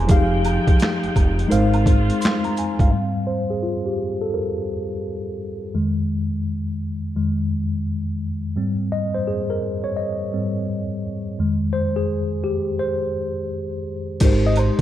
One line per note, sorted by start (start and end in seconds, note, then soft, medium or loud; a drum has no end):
0.00 0.31 G#5 medium
0.00 0.11 A#5 medium
0.00 0.11 C6 medium
0.07 0.59 F1 medium
0.07 1.02 F3 medium
0.07 1.49 F3 medium
0.07 1.49 G#3 medium
0.07 1.03 D#4 medium
0.07 1.49 D#4 medium
0.07 1.03 G4 medium
0.07 1.04 G#4 medium
0.07 1.49 G5 medium
0.07 kick loud
0.07 closed hi-hat medium
0.07 maracas medium
0.11 1.04 F5 loud
0.45 closed hi-hat medium
0.45 high woodblock medium
0.45 maracas medium
0.67 kick loud
0.67 closed hi-hat soft
0.80 finger snap medium
0.80 snare loud
0.80 closed hi-hat medium
0.80 maracas medium
1.04 1.09 F1 soft
1.04 closed hi-hat soft
1.16 1.46 F1 medium
1.16 kick medium
1.16 closed hi-hat medium
1.16 high woodblock medium
1.16 maracas soft
1.39 closed hi-hat soft
1.48 2.11 G#1 loud
1.48 2.38 G#3 medium
1.48 2.90 G#3 medium
1.48 2.90 C4 medium
1.48 2.39 D#4 medium
1.48 2.91 F4 medium
1.48 2.39 A#4 medium
1.48 2.40 C5 medium
1.48 closed hi-hat medium
1.48 maracas medium
1.52 2.22 F5 medium
1.74 closed hi-hat soft
1.74 high woodblock medium
1.86 kick loud
1.86 closed hi-hat medium
1.86 maracas medium
2.10 closed hi-hat medium
2.21 2.43 C6 medium
2.21 closed hi-hat medium
2.21 maracas medium
2.25 finger snap loud
2.25 snare loud
2.44 2.56 A#5 medium
2.44 closed hi-hat soft
2.44 high woodblock soft
2.57 2.79 G#5 medium
2.57 closed hi-hat medium
2.57 maracas soft
2.79 2.90 G1 medium
2.79 3.14 F5 medium
2.79 kick loud
2.79 closed hi-hat soft
2.92 3.94 G#2 soft
2.92 3.94 G3 soft
2.92 3.94 C4 medium
3.27 3.50 C5 medium
3.50 3.56 G#4 medium
3.63 3.84 F4 medium
3.86 4.18 G4 medium
4.21 4.32 A4 medium
4.34 5.35 A#4 medium
5.74 6.25 F2 soft
5.74 6.25 D#3 soft
5.74 6.25 G#3 medium
7.16 7.47 F2 soft
7.16 7.47 D#3 soft
7.16 7.48 G#3 soft
8.56 10.32 G#2 medium
8.56 10.32 G3 soft
8.56 10.32 C4 medium
8.92 9.13 D#5 loud
9.15 9.26 C5 medium
9.27 9.51 G#4 medium
9.50 9.86 A#4 medium
9.84 9.97 C#5 medium
9.97 10.99 D#5 medium
10.33 10.65 G#2 soft
10.33 10.65 G3 soft
10.33 10.65 C4 soft
11.39 14.17 F2 medium
11.39 14.17 D#3 soft
11.39 14.18 G#3 medium
11.73 11.97 C5 medium
11.96 12.46 G#4 medium
12.44 12.77 G4 medium
12.79 13.81 C5 medium
14.20 14.70 G#1 loud
14.20 14.81 G#3 medium
14.20 14.81 D#4 medium
14.20 14.81 G4 medium
14.20 14.81 A#4 medium
14.20 kick loud
14.20 closed hi-hat medium
14.20 crash loud
14.20 maracas medium
14.25 14.81 C5 medium
14.46 14.56 D#5 medium
14.56 14.81 C5 medium
14.56 closed hi-hat medium
14.56 high woodblock medium
14.56 maracas medium